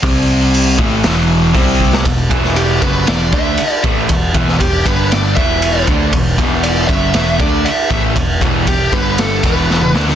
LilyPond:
<<
  \new Staff \with { instrumentName = "Lead electric guitar" } { \time 4/4 \key e \minor \tempo 4 = 118 r1 | r4 g'8 b'8 d''8 e''4 r8 | r4 g'8 b'8 d''8 e''4 r8 | r4 d''8 e''4 d''8 e''8. r16 |
r4 g'8 b'8 a'8 b'4 r8 | }
  \new Staff \with { instrumentName = "Overdriven electric guitar" } { \clef bass \time 4/4 \key e \minor <c g c'>4. <a, e a>8 <e, b, e>4 <c g c'>4 | <e, b,>8 <e, b, e>4 <fis, cis fis>8 <e, b, e>8 <d a d'>8 r8 <a, e a>8 | <e, b,>8 <e, b, e>8 <e, b,>8 <g, d g>4 <e, b, e>4 <d a d'>8 | <e, b,>8 <e, b, e>4 <fis, cis fis>8 <e, b, e>8 <d a d'>8 r8 <a, e a>8 |
<e, b,>8 <e, b, e>8 <e, b,>8 <g, d g>4 <e, b, e>4 <d a d'>8 | }
  \new Staff \with { instrumentName = "Picked electric bass" } { \clef bass \time 4/4 \key e \minor c,4. a,,8 e,,4 c,4 | e,,8 e,,4 fis,,8 e,,8 d,8 r8 a,,8 | e,,8 e,,8 e,,8 g,,4 e,,4 d,8 | e,,8 e,,4 fis,,8 e,,8 d,8 r8 a,,8 |
e,,8 e,,8 r8 g,,4 e,,4 d,8 | }
  \new DrumStaff \with { instrumentName = "Drums" } \drummode { \time 4/4 <hho bd>4 hho8 bd8 <hho sn>4 <hho bd>8 bd16 sn16 | <bd cymr>8 <bd cymr>16 sn16 cymr8 <bd cymr>8 <cymr sn>8 <bd cymr>8 cymr8 <bd cymr>8 | <bd cymr>8 <bd cymr>16 sn16 <bd cymr>8 <bd cymr>8 <cymr sn>8 <bd cymr>8 cymr8 <bd cymr>8 | <bd cymr>8 <bd cymr>8 cymr8 <bd cymr>8 <cymr sn>8 <bd cymr>8 cymr8 <bd cymr>8 |
<bd cymr>8 <bd cymr>8 <bd cymr>8 <bd cymr>8 <cymr sn>8 <bd cymr>8 sn16 toml16 sn16 sn16 | }
>>